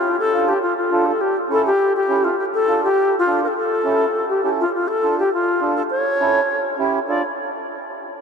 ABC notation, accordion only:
X:1
M:4/4
L:1/8
Q:1/4=204
K:Dm
V:1 name="Accordion"
z2 [DFA] z3 [DFA] z | z2 [^CEA] z3 [CEA] z | z2 [DFA] z3 [DFA] z | z2 [^CEA] z3 [CEA] z |
z2 [DFA] z3 [DFA] z | z2 [^CEA] z3 [CEG] z | [DFA] z6 z |]